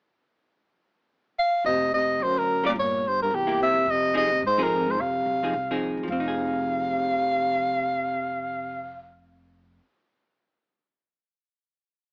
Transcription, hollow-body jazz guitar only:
0, 0, Header, 1, 2, 480
1, 0, Start_track
1, 0, Key_signature, -4, "minor"
1, 0, Tempo, 278422
1, 928, Time_signature, 4, 2, 24, 8
1, 20897, End_track
2, 0, Start_track
2, 0, Title_t, "Hollow-body jazz guitar"
2, 0, Program_c, 0, 26
2, 4544, Note_on_c, 0, 61, 57
2, 4546, Note_on_c, 0, 55, 51
2, 4560, Note_on_c, 0, 70, 59
2, 4562, Note_on_c, 0, 65, 53
2, 4732, Note_off_c, 0, 61, 0
2, 4733, Note_off_c, 0, 55, 0
2, 4740, Note_off_c, 0, 70, 0
2, 4741, Note_off_c, 0, 65, 0
2, 5982, Note_on_c, 0, 58, 54
2, 5984, Note_on_c, 0, 64, 60
2, 6012, Note_on_c, 0, 67, 60
2, 6630, Note_off_c, 0, 58, 0
2, 6631, Note_off_c, 0, 64, 0
2, 6645, Note_off_c, 0, 67, 0
2, 7131, Note_on_c, 0, 53, 57
2, 7144, Note_on_c, 0, 60, 57
2, 7147, Note_on_c, 0, 63, 54
2, 7159, Note_on_c, 0, 68, 61
2, 7397, Note_off_c, 0, 53, 0
2, 7403, Note_off_c, 0, 60, 0
2, 7405, Note_off_c, 0, 63, 0
2, 7410, Note_off_c, 0, 68, 0
2, 7891, Note_on_c, 0, 53, 66
2, 7894, Note_on_c, 0, 60, 58
2, 7906, Note_on_c, 0, 63, 66
2, 7913, Note_on_c, 0, 68, 71
2, 8545, Note_off_c, 0, 53, 0
2, 8547, Note_off_c, 0, 60, 0
2, 8553, Note_off_c, 0, 63, 0
2, 8556, Note_off_c, 0, 68, 0
2, 9362, Note_on_c, 0, 53, 55
2, 9370, Note_on_c, 0, 60, 51
2, 9379, Note_on_c, 0, 63, 54
2, 9381, Note_on_c, 0, 68, 51
2, 9541, Note_off_c, 0, 53, 0
2, 9545, Note_off_c, 0, 60, 0
2, 9550, Note_off_c, 0, 63, 0
2, 9551, Note_off_c, 0, 68, 0
2, 9840, Note_on_c, 0, 53, 51
2, 9842, Note_on_c, 0, 60, 58
2, 9846, Note_on_c, 0, 63, 58
2, 9856, Note_on_c, 0, 68, 55
2, 10379, Note_off_c, 0, 53, 0
2, 10399, Note_on_c, 0, 53, 60
2, 10483, Note_off_c, 0, 60, 0
2, 10485, Note_off_c, 0, 63, 0
2, 10490, Note_off_c, 0, 68, 0
2, 10555, Note_on_c, 0, 60, 61
2, 10691, Note_on_c, 0, 63, 57
2, 10823, Note_on_c, 0, 68, 58
2, 16895, Note_off_c, 0, 53, 0
2, 16972, Note_off_c, 0, 60, 0
2, 17040, Note_off_c, 0, 63, 0
2, 17106, Note_off_c, 0, 68, 0
2, 20897, End_track
0, 0, End_of_file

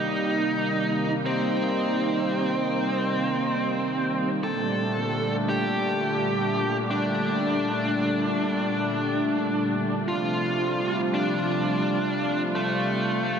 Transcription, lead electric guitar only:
0, 0, Header, 1, 2, 480
1, 0, Start_track
1, 0, Key_signature, -2, "minor"
1, 0, Tempo, 705882
1, 1097, Time_signature, 4, 2, 24, 8
1, 9109, End_track
2, 0, Start_track
2, 0, Title_t, "Lead electric guitar"
2, 0, Program_c, 0, 29
2, 0, Note_on_c, 0, 63, 90
2, 760, Note_off_c, 0, 63, 0
2, 855, Note_on_c, 0, 60, 98
2, 2920, Note_off_c, 0, 60, 0
2, 3015, Note_on_c, 0, 69, 95
2, 3640, Note_off_c, 0, 69, 0
2, 3736, Note_on_c, 0, 67, 86
2, 4600, Note_off_c, 0, 67, 0
2, 4696, Note_on_c, 0, 62, 95
2, 6760, Note_off_c, 0, 62, 0
2, 6856, Note_on_c, 0, 65, 96
2, 7480, Note_off_c, 0, 65, 0
2, 7577, Note_on_c, 0, 62, 89
2, 8441, Note_off_c, 0, 62, 0
2, 8536, Note_on_c, 0, 57, 97
2, 9109, Note_off_c, 0, 57, 0
2, 9109, End_track
0, 0, End_of_file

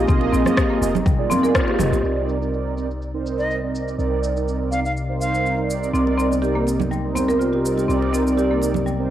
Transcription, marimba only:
0, 0, Header, 1, 2, 480
1, 0, Start_track
1, 0, Key_signature, -3, "minor"
1, 0, Tempo, 487805
1, 83, Time_signature, 4, 2, 24, 8
1, 8957, End_track
2, 0, Start_track
2, 0, Title_t, "Marimba"
2, 0, Program_c, 0, 12
2, 80, Note_on_c, 0, 60, 83
2, 151, Note_off_c, 0, 60, 0
2, 320, Note_on_c, 0, 60, 102
2, 391, Note_off_c, 0, 60, 0
2, 558, Note_on_c, 0, 67, 86
2, 683, Note_off_c, 0, 67, 0
2, 688, Note_on_c, 0, 58, 78
2, 790, Note_off_c, 0, 58, 0
2, 1041, Note_on_c, 0, 55, 81
2, 1112, Note_off_c, 0, 55, 0
2, 1278, Note_on_c, 0, 60, 104
2, 1397, Note_off_c, 0, 60, 0
2, 1411, Note_on_c, 0, 70, 100
2, 1516, Note_off_c, 0, 70, 0
2, 1521, Note_on_c, 0, 65, 81
2, 1638, Note_off_c, 0, 65, 0
2, 1651, Note_on_c, 0, 67, 78
2, 1751, Note_off_c, 0, 67, 0
2, 1893, Note_on_c, 0, 67, 76
2, 1992, Note_off_c, 0, 67, 0
2, 5840, Note_on_c, 0, 60, 71
2, 5911, Note_off_c, 0, 60, 0
2, 6075, Note_on_c, 0, 60, 91
2, 6149, Note_off_c, 0, 60, 0
2, 6317, Note_on_c, 0, 67, 75
2, 6443, Note_off_c, 0, 67, 0
2, 6448, Note_on_c, 0, 58, 69
2, 6549, Note_off_c, 0, 58, 0
2, 6801, Note_on_c, 0, 55, 76
2, 6871, Note_off_c, 0, 55, 0
2, 7039, Note_on_c, 0, 60, 91
2, 7157, Note_off_c, 0, 60, 0
2, 7167, Note_on_c, 0, 70, 88
2, 7274, Note_off_c, 0, 70, 0
2, 7277, Note_on_c, 0, 65, 73
2, 7396, Note_off_c, 0, 65, 0
2, 7407, Note_on_c, 0, 67, 70
2, 7509, Note_off_c, 0, 67, 0
2, 7649, Note_on_c, 0, 67, 67
2, 7750, Note_off_c, 0, 67, 0
2, 7758, Note_on_c, 0, 60, 72
2, 7830, Note_off_c, 0, 60, 0
2, 8000, Note_on_c, 0, 60, 91
2, 8071, Note_off_c, 0, 60, 0
2, 8241, Note_on_c, 0, 67, 76
2, 8364, Note_off_c, 0, 67, 0
2, 8372, Note_on_c, 0, 58, 68
2, 8471, Note_off_c, 0, 58, 0
2, 8720, Note_on_c, 0, 55, 73
2, 8791, Note_off_c, 0, 55, 0
2, 8957, End_track
0, 0, End_of_file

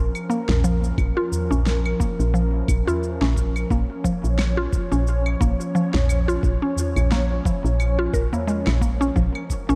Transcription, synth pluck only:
0, 0, Header, 1, 2, 480
1, 0, Start_track
1, 0, Key_signature, -5, "minor"
1, 0, Tempo, 681818
1, 690, Time_signature, 4, 2, 24, 8
1, 6865, End_track
2, 0, Start_track
2, 0, Title_t, "Synth pluck"
2, 0, Program_c, 0, 84
2, 209, Note_on_c, 0, 58, 79
2, 287, Note_off_c, 0, 58, 0
2, 451, Note_on_c, 0, 53, 77
2, 813, Note_off_c, 0, 53, 0
2, 822, Note_on_c, 0, 65, 98
2, 1050, Note_off_c, 0, 65, 0
2, 1060, Note_on_c, 0, 61, 74
2, 1123, Note_off_c, 0, 61, 0
2, 1407, Note_on_c, 0, 58, 73
2, 1486, Note_off_c, 0, 58, 0
2, 1646, Note_on_c, 0, 53, 78
2, 2010, Note_off_c, 0, 53, 0
2, 2024, Note_on_c, 0, 65, 91
2, 2251, Note_off_c, 0, 65, 0
2, 2263, Note_on_c, 0, 61, 78
2, 2324, Note_off_c, 0, 61, 0
2, 2610, Note_on_c, 0, 58, 80
2, 2687, Note_off_c, 0, 58, 0
2, 2846, Note_on_c, 0, 53, 80
2, 3210, Note_off_c, 0, 53, 0
2, 3220, Note_on_c, 0, 65, 105
2, 3449, Note_off_c, 0, 65, 0
2, 3461, Note_on_c, 0, 61, 80
2, 3523, Note_off_c, 0, 61, 0
2, 3806, Note_on_c, 0, 58, 79
2, 3885, Note_off_c, 0, 58, 0
2, 4048, Note_on_c, 0, 53, 76
2, 4411, Note_off_c, 0, 53, 0
2, 4423, Note_on_c, 0, 65, 96
2, 4650, Note_off_c, 0, 65, 0
2, 4662, Note_on_c, 0, 61, 76
2, 4723, Note_off_c, 0, 61, 0
2, 5010, Note_on_c, 0, 58, 86
2, 5087, Note_off_c, 0, 58, 0
2, 5249, Note_on_c, 0, 53, 76
2, 5612, Note_off_c, 0, 53, 0
2, 5623, Note_on_c, 0, 65, 100
2, 5718, Note_off_c, 0, 65, 0
2, 5727, Note_on_c, 0, 70, 79
2, 5857, Note_off_c, 0, 70, 0
2, 5863, Note_on_c, 0, 58, 74
2, 5963, Note_off_c, 0, 58, 0
2, 5966, Note_on_c, 0, 56, 75
2, 6090, Note_off_c, 0, 56, 0
2, 6205, Note_on_c, 0, 58, 75
2, 6336, Note_off_c, 0, 58, 0
2, 6341, Note_on_c, 0, 61, 99
2, 6437, Note_off_c, 0, 61, 0
2, 6448, Note_on_c, 0, 53, 78
2, 6811, Note_off_c, 0, 53, 0
2, 6822, Note_on_c, 0, 61, 94
2, 6865, Note_off_c, 0, 61, 0
2, 6865, End_track
0, 0, End_of_file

